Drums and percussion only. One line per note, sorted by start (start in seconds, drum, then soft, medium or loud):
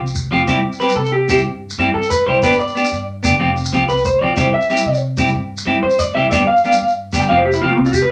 0.07 shekere soft
0.15 shekere medium
0.47 shekere medium
0.73 shekere soft
0.80 shekere soft
0.89 shekere medium
1.05 shekere soft
1.29 shekere medium
1.38 shekere soft
1.70 shekere medium
2.03 shekere soft
2.11 shekere medium
2.43 shekere medium
2.52 shekere soft
2.59 shekere soft
2.68 shekere soft
2.76 shekere soft
2.84 shekere medium
2.93 shekere soft
3.24 shekere medium
3.57 shekere soft
3.65 shekere medium
3.73 shekere soft
3.89 shekere soft
3.97 shekere soft
4.05 shekere medium
4.37 shekere loud
4.61 shekere soft
4.70 shekere soft
4.77 shekere medium
4.94 shekere soft
5.17 shekere medium
5.26 shekere soft
5.58 shekere medium
5.90 shekere soft
5.99 shekere medium
6.32 shekere loud
6.57 shekere soft
6.64 shekere soft
6.72 shekere medium
6.88 shekere soft
7.13 shekere medium
7.21 shekere soft
7.53 shekere medium
7.86 shekere soft
7.93 shekere medium